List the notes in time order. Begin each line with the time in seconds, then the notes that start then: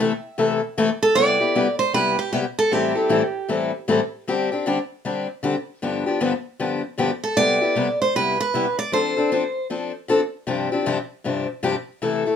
Already playing: E5
0.00 C3 E3 A3 E4 A4
0.38 C3 E3 A3 E4 A4
0.78 C3 E3 A3 E4 A4
1.03 A4
1.15 C3 G3 B3 E4 G4 D5
1.40 B3 E4 G4
1.55 C3 G3 B3 E4 G4
1.79 C5
1.93 C3 G3 B3 E4 G4 B4
2.19 G4
2.33 C3 G3 B3 E4 G4
2.59 A4
2.71 A2 E3 G3 C4 E4 G4 A4
2.95 G3 C4 E4 A4
3.09 A2 E3 G3 C4 E4 A4
3.48 A2 E3 G3 C4 E4 A4
3.88 A2 E3 G3 C4 E4 A4
4.28 D3 G3 C4 D4 G4
4.52 C4 D4 G4
4.66 D3 G3 C4 D4 G4
5.05 D3 G3 C4 D4 G4
5.43 D3 G3 C4 D4 G4
5.82 G2 D3 F3 B3 D4 G4
6.06 F3 B3 D4 G4
6.20 G2 D3 F3 B3 D4 G4
6.60 G2 D3 F3 B3 D4 G4
6.98 G2 D3 F3 B3 D4 G4
7.24 A4
7.36 C3 G3 B3 E4 G4 D5
7.61 B3 E4 G4
7.76 C3 G3 B3 E4 G4
8.02 C5
8.15 C3 G3 B3 E4 G4 B4
8.40 B4
8.54 C3 G3 B3 E4 G4
8.79 D5
8.92 F3 C4 D4 A4 C5
9.17 C4 D4 A4
9.32 F3 C4 D4 A4
9.70 F3 C4 D4 A4
10.08 F3 C4 D4 A4
10.47 G2 C3 F3 C4 D4 G4
10.72 F3 C4 D4 G4
10.86 G2 C3 F3 C4 D4 G4
11.24 G2 C3 F3 C4 D4 G4
11.63 G2 C3 F3 C4 D4 G4
12.02 C3 E3 A3 E4 A4
12.25 A3 E4 A4